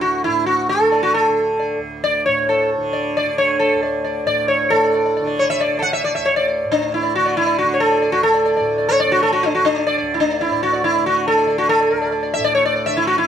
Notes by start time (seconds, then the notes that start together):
Already playing: D2 A2 D3
0.01 F#4
0.24 A2 E4
0.46 F#4
0.69 A4
0.79 D3
0.92 D5
1.03 F#4
1.14 A4
1.28 D3
1.59 D5
1.79 D2
2.04 D5
2.26 A2 C#5
2.49 A4
2.77 D3
2.93 D5
3.17 D5
3.27 D3
3.38 C#5
3.59 A4
3.75 D2
3.83 D5
4.04 D5
4.25 A2 D5
4.48 C#5
4.70 A2 A4 D5
4.83 D5
4.94 D5
5.06 D5
5.17 D3 D5
5.27 D5
5.39 C#5
5.50 E5
5.61 D5
5.68 D3
5.79 A4 F#5
5.93 E5
6.04 D5
6.15 D2 E5
6.25 C#5
6.36 D5
6.48 D5
6.65 A2
6.72 D4
6.94 E4
7.03 D5
7.15 D3 F#4
7.26 D5
7.37 E4
7.46 D5
7.58 F#4
7.63 D3
7.74 C#5
7.80 A4
7.91 D5
8.02 D5
8.12 D2 F#4
8.23 A4
8.34 D5
8.45 D5
8.57 A2 D5
8.78 D5
8.89 C#5
9.00 D5
9.08 D3 F#4
9.23 A4
9.33 F#4
9.43 D4
9.55 D3 F#4
9.65 D4
9.76 D5
9.87 D5
9.98 D5
10.02 D2
10.14 E4
10.20 D4
10.31 D5
10.41 E4
10.51 A2 D5
10.63 F#4
10.73 D5
10.84 E4
10.95 D3 D5
11.06 F#4
11.28 A4
11.38 D5
11.46 D3 D5
11.58 F#4
11.69 A4
11.80 D5
11.91 D2 D5
12.02 D5
12.12 D5
12.23 D5
12.34 E5
12.39 A2
12.44 D5
12.55 C#5
12.65 D5
12.76 D5
12.86 D3 E5
12.97 E4
13.07 F#4
13.18 E4